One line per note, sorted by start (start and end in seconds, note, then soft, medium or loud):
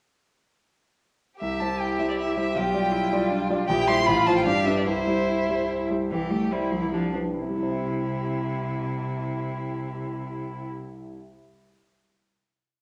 1.40 1.60 C2 soft
1.40 2.56 G4 soft
1.40 1.62 E5 medium
1.60 1.96 G3 soft
1.60 1.96 E4 soft
1.60 1.96 C5 soft
1.60 1.82 A5 medium
1.79 2.51 E4 soft
1.79 2.01 G5 medium
1.99 2.33 G3 soft
1.99 2.33 E4 soft
1.99 2.34 C5 soft
1.99 2.09 E5 medium
2.09 2.13 D5 soft
2.19 2.37 E5 medium
2.37 2.54 G3 soft
2.37 2.54 E4 soft
2.37 2.54 C5 soft
2.37 2.58 E5 medium
2.55 2.74 B1 soft
2.55 3.69 F4 soft
2.55 2.93 G4 medium
2.55 3.51 G5 medium
2.74 3.08 G3 soft
2.74 3.08 F4 soft
2.74 3.08 D5 soft
2.92 3.32 E4 medium
3.13 3.47 G3 soft
3.13 3.47 F4 soft
3.13 3.47 D5 soft
3.30 3.68 D4 medium
3.50 3.67 G3 soft
3.50 3.67 F4 soft
3.50 3.68 D5 soft
3.68 3.88 A#1 medium
3.68 4.09 E4 medium
3.68 4.06 G4 medium
3.68 3.89 G5 medium
3.88 4.06 G3 soft
3.88 4.06 E4 soft
3.88 4.06 C5 medium
3.88 4.08 C6 loud
4.06 4.27 A1 medium
4.06 4.48 F4 medium
4.06 4.47 F4 medium
4.06 4.29 B5 loud
4.27 4.45 F3 soft
4.27 4.45 F4 soft
4.27 4.45 C5 soft
4.27 4.37 A5 medium
4.37 4.46 G5 medium
4.46 4.66 G2 medium
4.46 4.86 D4 medium
4.46 4.88 G4 medium
4.46 4.67 F5 medium
4.66 4.85 G3 soft
4.66 4.85 D4 soft
4.66 4.85 B4 soft
4.66 4.79 E5 medium
4.78 4.87 D5 medium
4.87 5.07 C2 soft
4.87 5.87 E4 medium
4.87 5.90 E4 medium
4.87 5.67 C5 medium
5.07 5.44 G3 soft
5.07 5.44 E4 soft
5.07 5.45 C5 soft
5.49 5.86 G3 soft
5.49 5.86 E4 soft
5.49 5.87 C5 soft
5.90 6.09 G3 soft
5.90 6.09 E4 soft
5.90 6.09 C5 soft
6.11 6.70 C2 soft
6.11 6.32 E3 medium
6.11 6.54 G4 medium
6.31 6.63 G3 soft
6.31 6.52 A3 medium
6.51 6.72 G3 medium
6.51 6.70 E4 soft
6.51 6.95 E4 soft
6.51 6.70 C5 soft
6.71 7.33 C2 soft
6.71 6.83 F3 medium
6.82 6.91 E3 medium
6.91 7.12 F3 medium
6.91 7.27 G3 soft
6.91 7.14 D4 soft
7.13 7.21 F3 soft
7.13 7.33 D4 soft
7.13 7.33 B4 soft
7.35 11.14 C2 soft
7.35 10.65 C3 soft
7.35 10.66 E4 soft
7.42 11.21 C3 soft
7.49 11.28 G3 soft
7.55 11.34 E4 soft
7.63 11.42 C5 soft
7.70 11.49 E5 soft